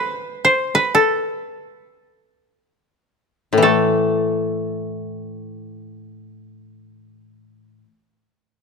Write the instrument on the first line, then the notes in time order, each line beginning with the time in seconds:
koto
Already playing: A4 B4
0.45 C5
0.75 B4
0.95 A4
3.53 A2
3.58 E3
3.63 A3 A4